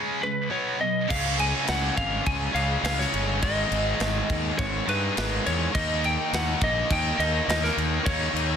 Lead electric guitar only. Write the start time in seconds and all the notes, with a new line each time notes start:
Already playing: G#4
0.23 B4
0.51 C#5
0.81 D#5
1.10 F5
1.40 G#5
1.69 F#5
1.97 F5
2.27 G#5
2.55 F5
2.85 F5
2.99 C#5
3.43 D#5
4.58 C#5
4.89 B4
5.18 B4
5.46 C#5
5.75 D#5
6.05 G5
6.34 F#5
6.64 D#5
6.92 G5
7.20 D#5
7.49 D#5
7.64 A#4
8.06 C#5